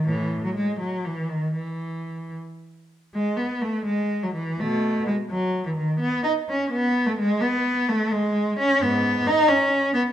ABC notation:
X:1
M:6/8
L:1/16
Q:3/8=84
K:E
V:1 name="Cello" clef=bass
[A,,E,]3 F, G,2 F,2 E,2 D,2 | E,6 z6 | G,2 B,2 A,2 G,3 F, E,2 | [B,,A,]4 G,2 F,3 E, D,2 |
B,2 D2 C2 B,3 A, G,2 | B,4 A,2 G,4 C2 | [G,,B,]4 D2 C4 B,2 |]